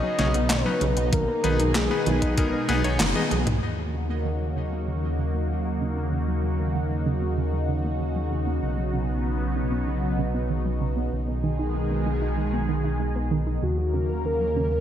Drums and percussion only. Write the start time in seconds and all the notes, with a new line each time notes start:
0.19 snare, closed hi-hat
0.34 closed hi-hat
0.50 snare, clap, closed hi-hat
0.81 closed hi-hat
0.97 closed hi-hat
1.13 kick, closed hi-hat
1.44 closed hi-hat
1.60 closed hi-hat
1.75 snare, clap, closed hi-hat
2.06 closed hi-hat
2.22 kick, closed hi-hat
2.38 kick, closed hi-hat
2.69 snare, closed hi-hat
2.84 closed hi-hat
3.00 snare, clap, closed hi-hat, high tom
3.16 high tom
3.31 closed hi-hat
3.47 closed hi-hat, mid tom